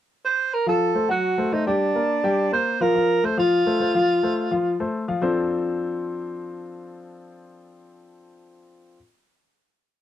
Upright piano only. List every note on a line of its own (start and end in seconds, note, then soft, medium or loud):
0.66 0.90 F3 medium
0.66 0.90 F4 medium
0.66 0.90 F5 medium
0.95 1.06 A3 medium
0.95 1.07 A4 medium
0.95 1.07 C5 medium
1.09 1.32 F#3 medium
1.09 1.33 F#4 medium
1.09 1.33 F#5 medium
1.38 1.49 A3 medium
1.38 1.50 A4 medium
1.38 1.50 C5 medium
1.52 1.64 A3 medium
1.52 1.64 A4 medium
1.52 1.64 C5 medium
1.67 1.90 G3 medium
1.67 1.90 G4 medium
1.67 1.90 G5 medium
1.95 2.18 A#3 medium
1.95 2.19 A#4 medium
1.95 2.19 D5 medium
2.24 2.47 G3 medium
2.24 2.47 G4 medium
2.24 2.47 G5 medium
2.52 2.75 A#3 medium
2.52 2.76 A#4 medium
2.52 2.76 C5 medium
2.81 2.92 F3 medium
2.81 2.92 F4 medium
2.81 2.93 F5 medium
2.95 3.18 F3 medium
2.95 3.18 F4 medium
2.95 3.19 F5 medium
3.23 3.35 A3 medium
3.23 3.35 A4 medium
3.23 3.35 C5 medium
3.37 3.61 F3 medium
3.37 3.61 F4 medium
3.37 3.61 F5 medium
3.66 3.78 A3 medium
3.66 3.78 A4 medium
3.66 3.78 C5 medium
3.80 3.92 A3 medium
3.80 3.92 A4 medium
3.80 3.92 C5 medium
3.95 4.18 F3 medium
3.95 4.18 F4 medium
3.95 4.18 F5 medium
4.23 4.46 A3 medium
4.23 4.46 A4 medium
4.23 4.46 C5 medium
4.51 4.74 F3 medium
4.51 4.75 F4 medium
4.51 4.75 F5 medium
4.80 5.03 A3 medium
4.80 5.03 A4 medium
4.80 5.03 C5 medium
5.08 5.20 F3 medium
5.08 5.20 F4 medium
5.08 5.20 F5 medium
5.22 8.96 F3 medium
5.22 8.96 C4 medium
5.22 8.96 D4 medium
5.22 8.96 F4 medium
5.22 8.96 A4 medium
5.22 8.97 C5 medium